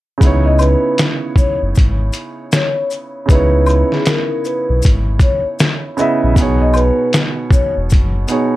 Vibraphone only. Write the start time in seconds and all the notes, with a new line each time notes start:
0.46 D#5
0.60 B4
1.38 C#5
2.53 C#5
3.30 B4
3.92 G#4
4.07 A#4
4.46 B4
5.23 C#5
6.62 D#5
6.76 B4
7.53 C#5